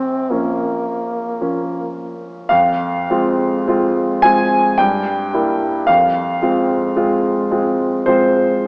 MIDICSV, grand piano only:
0, 0, Header, 1, 2, 480
1, 0, Start_track
1, 0, Key_signature, -4, "minor"
1, 0, Tempo, 1104972
1, 1093, Time_signature, 3, 2, 24, 8
1, 1093, Tempo, 1134216
1, 2053, Tempo, 1096892
1, 3493, Tempo, 1181102
1, 3735, End_track
2, 0, Start_track
2, 0, Title_t, "Grand piano"
2, 0, Program_c, 0, 0
2, 0, Control_c, 0, 64, 127
2, 0, Note_on_c, 0, 34, 38
2, 121, Note_off_c, 0, 34, 0
2, 133, Note_on_c, 0, 53, 26
2, 133, Note_on_c, 0, 58, 29
2, 135, Note_on_c, 0, 61, 30
2, 595, Note_off_c, 0, 53, 0
2, 595, Note_off_c, 0, 58, 0
2, 596, Note_off_c, 0, 61, 0
2, 612, Note_on_c, 0, 53, 28
2, 614, Note_on_c, 0, 58, 28
2, 615, Note_on_c, 0, 61, 28
2, 1075, Note_off_c, 0, 53, 0
2, 1077, Note_off_c, 0, 58, 0
2, 1077, Note_off_c, 0, 61, 0
2, 1082, Note_on_c, 0, 77, 71
2, 1087, Note_on_c, 0, 41, 49
2, 1101, Control_c, 0, 64, 0
2, 1174, Control_c, 0, 64, 127
2, 1327, Note_off_c, 0, 41, 0
2, 1340, Note_on_c, 0, 56, 34
2, 1341, Note_on_c, 0, 60, 36
2, 1344, Note_on_c, 0, 65, 39
2, 1565, Note_off_c, 0, 56, 0
2, 1565, Note_off_c, 0, 60, 0
2, 1567, Note_off_c, 0, 65, 0
2, 1582, Note_on_c, 0, 56, 36
2, 1584, Note_on_c, 0, 60, 40
2, 1587, Note_on_c, 0, 65, 40
2, 1803, Note_off_c, 0, 56, 0
2, 1804, Note_off_c, 0, 60, 0
2, 1805, Note_off_c, 0, 65, 0
2, 1813, Note_off_c, 0, 77, 0
2, 1815, Note_on_c, 0, 80, 77
2, 1820, Note_on_c, 0, 56, 36
2, 1823, Note_on_c, 0, 60, 34
2, 1823, Note_on_c, 0, 65, 39
2, 2037, Note_off_c, 0, 56, 0
2, 2038, Note_off_c, 0, 65, 0
2, 2039, Note_off_c, 0, 60, 0
2, 2050, Note_on_c, 0, 79, 69
2, 2051, Note_off_c, 0, 80, 0
2, 2056, Note_on_c, 0, 43, 49
2, 2062, Control_c, 0, 64, 0
2, 2146, Control_c, 0, 64, 127
2, 2287, Note_off_c, 0, 43, 0
2, 2293, Note_on_c, 0, 55, 34
2, 2297, Note_on_c, 0, 58, 35
2, 2297, Note_on_c, 0, 64, 41
2, 2514, Note_off_c, 0, 55, 0
2, 2515, Note_off_c, 0, 58, 0
2, 2515, Note_off_c, 0, 64, 0
2, 2527, Note_on_c, 0, 77, 75
2, 2529, Note_off_c, 0, 79, 0
2, 2532, Note_on_c, 0, 41, 45
2, 2540, Control_c, 0, 64, 0
2, 2614, Control_c, 0, 64, 127
2, 2763, Note_off_c, 0, 41, 0
2, 2767, Note_on_c, 0, 56, 35
2, 2771, Note_on_c, 0, 65, 39
2, 2774, Note_on_c, 0, 60, 36
2, 2990, Note_off_c, 0, 56, 0
2, 2992, Note_off_c, 0, 65, 0
2, 2993, Note_off_c, 0, 60, 0
2, 3005, Note_on_c, 0, 56, 37
2, 3007, Note_on_c, 0, 60, 36
2, 3008, Note_on_c, 0, 65, 42
2, 3229, Note_off_c, 0, 56, 0
2, 3230, Note_off_c, 0, 60, 0
2, 3230, Note_off_c, 0, 65, 0
2, 3247, Note_on_c, 0, 56, 39
2, 3248, Note_on_c, 0, 60, 35
2, 3250, Note_on_c, 0, 65, 37
2, 3474, Note_off_c, 0, 56, 0
2, 3475, Note_off_c, 0, 60, 0
2, 3476, Note_off_c, 0, 65, 0
2, 3486, Note_on_c, 0, 72, 66
2, 3490, Note_off_c, 0, 77, 0
2, 3490, Note_on_c, 0, 56, 37
2, 3494, Note_on_c, 0, 60, 37
2, 3494, Note_on_c, 0, 65, 42
2, 3715, Note_off_c, 0, 56, 0
2, 3717, Note_off_c, 0, 60, 0
2, 3717, Note_off_c, 0, 65, 0
2, 3735, Note_off_c, 0, 72, 0
2, 3735, End_track
0, 0, End_of_file